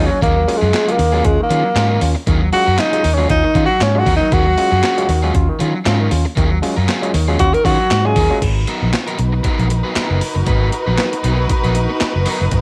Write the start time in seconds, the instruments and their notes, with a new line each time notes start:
Already playing: overdriven electric guitar F#3 C#4
0.06 tenor saxophone C#4
0.10 muted overdriven electric guitar stroke
0.21 fingered electric bass D#2, clav D#3, overdriven electric guitar F#3 C#4 F4 G#4, tenor saxophone A#3, kick, closed hi-hat
0.36 clav C#4 F4, muted overdriven electric guitar stroke
0.47 clav F#3 G#3 C#4 F4, muted overdriven electric guitar stroke, open hi-hat
0.57 tenor saxophone G#3
0.61 fingered electric bass F#2, overdriven electric guitar F#3 C#4 F4 G#4
0.72 overdriven electric guitar F#3 C#4 F4 G#4, snare, clap, closed hi-hat
0.87 clav F#3 G#3 C#4 F4, tenor saxophone A#3, closed hi-hat
0.98 fingered electric bass D#2, clav D#3, muted overdriven electric guitar stroke, open hi-hat
1.12 clav F#3 G#3 C#4 F4, overdriven electric guitar F#3 C#4 F4 G#4
1.24 fingered electric bass D#2, tenor saxophone G#3, clav C#4 F4, muted overdriven electric guitar stroke, kick, closed hi-hat
1.39 clav D#3, tenor saxophone A#3
1.50 fingered electric bass D#3, overdriven electric guitar F#3 C#4 F4 G#4, clav C#4 F4, closed hi-hat
1.63 muted overdriven electric guitar stroke
1.75 fingered electric bass G#2, overdriven electric guitar F#3 C#4 F4 A#4, clav C#4 F4, snare, clap, closed hi-hat
1.90 clav D#3
2.01 fingered electric bass D#2, clav C#4 F4, muted overdriven electric guitar stroke, open hi-hat
2.15 muted overdriven electric guitar stroke
2.27 fingered electric bass D#2, clav D#3, overdriven electric guitar F#3 C#4 F4 G#4, kick, closed hi-hat
2.42 clav C#4 F4, muted overdriven electric guitar stroke
2.52 clav F#3 G#3 C#4 F4, tenor saxophone F#4, muted overdriven electric guitar stroke, open hi-hat
2.66 fingered electric bass F#2, overdriven electric guitar F#3 C#4 F4 A#4
2.78 overdriven electric guitar F#3 C#4 F4 G#4, tenor saxophone D#4, snare, clap, closed hi-hat
2.92 clav F#3 G#3 C#4 F4, closed hi-hat
3.04 fingered electric bass D#2, clav D#3, muted overdriven electric guitar stroke, open hi-hat
3.14 tenor saxophone C#4, overdriven electric guitar G#4
3.18 clav F#3 G#3 C#4 F4, overdriven electric guitar F#3 C#4 F4
3.29 fingered electric bass D#2, clav C#4 F4, tenor saxophone D#4, muted overdriven electric guitar stroke, kick, closed hi-hat
3.44 clav D#3, muted overdriven electric guitar stroke
3.55 fingered electric bass D#3, overdriven electric guitar F#3 C#4 F4 G#4, clav C#4 F4, kick, closed hi-hat
3.66 tenor saxophone F#4, muted overdriven electric guitar stroke
3.81 fingered electric bass G#2, tenor saxophone C#4, snare, clap, closed hi-hat
3.95 clav F#3 G#3 C#4 F4, muted overdriven electric guitar stroke
3.99 tenor saxophone F#4
4.06 fingered electric bass D#2, overdriven electric guitar F#3 C#4 F4 A#4, kick, open hi-hat
4.16 tenor saxophone D#4, muted overdriven electric guitar stroke
4.21 clav D#3
4.31 fingered electric bass D#2, clav D#3, overdriven electric guitar F#3 C#4 F4 G#4, tenor saxophone F#4, kick, closed hi-hat
4.46 clav C#4 F4, muted overdriven electric guitar stroke
4.57 clav F#3 G#3 C#4 F4, muted overdriven electric guitar stroke, open hi-hat
4.71 fingered electric bass F#2, overdriven electric guitar F#3 C#4 F4 G#4
4.83 overdriven electric guitar F#3 C#4 F4 G#4, snare, clap, closed hi-hat
4.98 clav F#3 G#3 C#4 F4, closed hi-hat
5.09 fingered electric bass D#2, clav D#3, muted overdriven electric guitar stroke, open hi-hat
5.23 clav F#3 G#3 C#4 F4, overdriven electric guitar F#3 C#4 F4 G#4
5.34 fingered electric bass D#2, clav C#4 F4, muted overdriven electric guitar stroke, kick, closed hi-hat
5.49 clav D#3
5.59 fingered electric bass D#3, overdriven electric guitar F#3 C#4 F4 G#4, clav C#4 F4, closed hi-hat
5.73 muted overdriven electric guitar stroke
5.85 fingered electric bass G#2, overdriven electric guitar F#3 C#4 F4 A#4, clav C#4 F4, snare, clap, closed hi-hat
6.00 clav D#3
6.10 fingered electric bass D#2, clav C#4 F4, muted overdriven electric guitar stroke, open hi-hat
6.25 muted overdriven electric guitar stroke
6.36 fingered electric bass D#2, clav D#3, overdriven electric guitar F#3 C#4 F4 G#4, kick, closed hi-hat
6.51 clav C#4 F4, muted overdriven electric guitar stroke
6.62 clav F#3 G#3 C#4 F4, muted overdriven electric guitar stroke, open hi-hat
6.77 fingered electric bass F#2, overdriven electric guitar F#3 C#4 F4 A#4
6.88 overdriven electric guitar F#3 C#4 F4 G#4, snare, clap, closed hi-hat
7.02 clav F#3 G#3 C#4 F4, closed hi-hat
7.14 fingered electric bass D#2, clav D#3, muted overdriven electric guitar stroke, open hi-hat
7.28 clav F#3 G#3 C#4 F4, overdriven electric guitar F#3 C#4 F4 G#4
7.39 fingered electric bass D#2, clav C#4 F4, tenor saxophone F#4, muted overdriven electric guitar stroke, kick, closed hi-hat
7.53 clav D#3, tenor saxophone A#4, muted overdriven electric guitar stroke, closed hi-hat
7.65 fingered electric bass D#3, overdriven electric guitar F#3 C#4 F4 G#4, clav C#4 F4, tenor saxophone F#4, kick, open hi-hat
7.79 muted overdriven electric guitar stroke
7.91 fingered electric bass G#2, snare, clap, closed hi-hat
8.05 clav F#3 G#3 C#4 F4, tenor saxophone G#4, muted overdriven electric guitar stroke
8.16 fingered electric bass D#2, clav D#3, overdriven electric guitar F#3 C#4 F4 A#4, kick, open hi-hat
8.30 clav F#3 G#3 C#4 F4, muted overdriven electric guitar stroke
8.42 fingered electric bass G#1, string section D#4 F#4 A#4 B4, kick, closed hi-hat, crash
8.67 overdriven electric guitar F#3 B3 D#4 A#4, closed hi-hat
8.83 fingered electric bass A#1
8.93 muted overdriven electric guitar stroke, snare, clap, closed hi-hat
9.07 overdriven electric guitar F#3 B3 D#4 A#4, closed hi-hat
9.18 fingered electric bass B1, muted overdriven electric guitar stroke, closed hi-hat
9.33 muted overdriven electric guitar stroke
9.44 overdriven electric guitar F#3 B3 D#4 A#4, kick, closed hi-hat
9.59 fingered electric bass A#1, closed hi-hat
9.70 muted overdriven electric guitar stroke, closed hi-hat
9.84 overdriven electric guitar F#3 B3 D#4 B4
9.95 overdriven electric guitar F#3 B3 D#4 A#4, muted fingered electric bass stroke, snare, clap, closed hi-hat
10.11 fingered electric bass F#1
10.20 muted overdriven electric guitar stroke, open hi-hat
10.35 fingered electric bass F#1, muted overdriven electric guitar stroke
10.46 fingered electric bass G#1, overdriven electric guitar F#3 B3 D#4 B4, kick, closed hi-hat
10.72 muted overdriven electric guitar stroke, closed hi-hat
10.87 fingered electric bass A#1, overdriven electric guitar F#3 B3 D#4 B4
10.98 snare, clap, closed hi-hat
11.12 muted overdriven electric guitar stroke, closed hi-hat
11.24 fingered electric bass B1, overdriven electric guitar F#3 B3 D#4 B4, closed hi-hat
11.38 muted overdriven electric guitar stroke
11.49 muted overdriven electric guitar stroke, kick, closed hi-hat
11.64 fingered electric bass A#1, overdriven electric guitar F#3 B3 D#4 B4, closed hi-hat
11.75 muted overdriven electric guitar stroke, closed hi-hat
11.90 muted overdriven electric guitar stroke
12.01 muted overdriven electric guitar stroke, muted fingered electric bass stroke, snare, clap, closed hi-hat
12.16 fingered electric bass F#1
12.26 overdriven electric guitar F#3 B3 D#4 A#4, open hi-hat
12.41 fingered electric bass F#1, muted overdriven electric guitar stroke
12.51 fingered electric bass G#1, kick, closed hi-hat